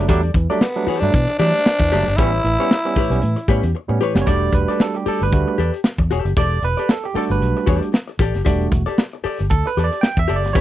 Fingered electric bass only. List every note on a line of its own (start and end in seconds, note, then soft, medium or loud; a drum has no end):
0.09 0.30 E2 loud
0.35 0.47 E2 medium
0.87 muted fingered electric bass stroke medium
1.02 1.11 G2 medium
1.14 1.25 B2 medium
1.39 1.51 E3 loud
1.80 1.89 E2 loud
1.92 2.04 F#1 loud
2.08 2.18 G1 loud
2.18 2.39 A1 loud
2.44 2.56 A1 medium
2.97 muted fingered electric bass stroke soft
3.10 3.20 B1 medium
3.23 3.35 A2 loud
3.48 3.60 A2 medium
3.63 3.72 E2 loud
3.89 3.98 A2 medium
4.15 4.24 F#1 medium
4.28 4.48 E1 medium
4.53 4.65 E1 medium
5.06 muted fingered electric bass stroke soft
5.22 5.30 G1 medium
5.33 5.44 D2 loud
5.58 5.70 E2 medium
5.99 6.08 E2 medium
6.11 6.22 E1 medium
6.25 6.34 F#1 loud
6.37 6.57 E1 loud
6.62 6.74 E1 loud
7.15 muted fingered electric bass stroke medium
7.30 7.39 G1 loud
7.41 7.52 B1 medium
7.67 7.79 E2 medium
8.19 8.31 A1 medium
8.35 8.44 F#1 medium
8.46 8.67 E1 loud
8.72 8.84 E1 loud
9.25 muted fingered electric bass stroke medium
9.40 9.49 G1 medium
9.51 9.62 D2 medium
9.77 9.88 E2 medium
10.17 10.26 E2 medium
10.29 10.45 F#1 medium
10.45 10.56 G1 loud
10.56 10.61 A1 medium